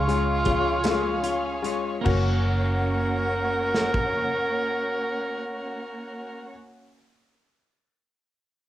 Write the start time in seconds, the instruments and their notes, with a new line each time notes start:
Already playing: fingered electric bass C#2, clean electric guitar G#3, tenor saxophone F4, string section G#4 C#5 F5 C#6
0.08 grand piano G#3 C#4 F4, clean electric guitar C#4, closed hi-hat
0.45 grand piano G#3 C#4 F4, clean electric guitar F4, kick, closed hi-hat
0.84 grand piano G#3 C#4 F4, clean electric guitar C#4, snare, closed hi-hat
1.22 grand piano C#4 F4, clean electric guitar F4, closed hi-hat
1.62 grand piano G#3 C#4 F4, clean electric guitar C#4, closed hi-hat
2.01 clean electric guitar A#3, grand piano A#3 C#4 F#4, string section F#4
2.05 fingered electric bass F#1, string section A#3 C#4 C#5 F#5, tenor saxophone A#4, kick, crash
2.10 clean electric guitar C#4
2.17 clean electric guitar F#4
3.74 snare
3.94 kick